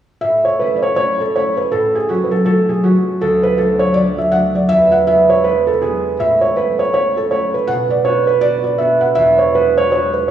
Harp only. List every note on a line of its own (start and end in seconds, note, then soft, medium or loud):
0.23 1.72 A2 medium
0.61 0.98 A3 soft
0.61 0.98 C#4 soft
0.61 0.99 E4 soft
0.98 1.35 A3 soft
0.98 1.36 C#4 soft
0.98 1.36 E4 soft
1.36 2.10 A3 soft
1.36 2.10 C#4 soft
1.36 3.97 E4 soft
1.73 3.26 A2 medium
2.10 2.45 F#3 soft
2.10 2.47 A3 soft
2.10 2.47 C#4 medium
2.47 2.83 F#3 soft
2.47 2.84 A3 soft
2.47 2.85 C#4 soft
2.84 3.26 F#3 soft
2.84 3.58 A3 soft
2.84 3.27 C#4 medium
3.21 4.75 D2 medium
3.57 3.95 F#3 soft
3.57 3.96 A3 soft
3.57 3.96 D4 medium
3.96 4.33 F#3 soft
3.96 4.34 A3 soft
3.96 4.34 D4 soft
4.33 4.75 F#3 soft
4.33 5.13 A3 soft
4.33 6.63 D4 soft
4.70 6.24 E2 medium
5.08 5.44 G#3 soft
5.08 5.45 B3 soft
5.08 5.45 E4 soft
5.45 5.81 G#3 soft
5.45 5.82 B3 soft
5.45 5.82 E4 soft
5.82 6.24 G#3 soft
5.82 8.04 B3 soft
5.82 6.56 E4 soft
6.19 7.73 A2 medium
6.56 6.93 A3 soft
6.56 6.93 C#4 soft
6.56 6.94 E4 medium
6.93 7.30 A3 soft
6.93 7.31 C#4 soft
6.93 7.31 E4 soft
7.31 9.60 A3 soft
7.31 8.11 C#4 soft
7.31 9.54 E4 soft
7.68 9.22 B2 medium
8.04 8.42 B3 soft
8.04 8.43 D4 soft
8.04 8.43 F#4 medium
8.42 8.79 B3 soft
8.42 8.79 D4 soft
8.42 8.79 F#4 soft
8.79 10.31 B3 soft
8.79 10.31 D4 soft
8.79 9.55 F#4 medium
9.17 10.31 E2 medium
9.54 9.91 G#3 soft
9.54 9.92 E4 soft
9.54 9.92 F#4 medium
9.92 10.28 G#3 soft
9.92 10.29 E4 soft
9.92 10.29 F#4 soft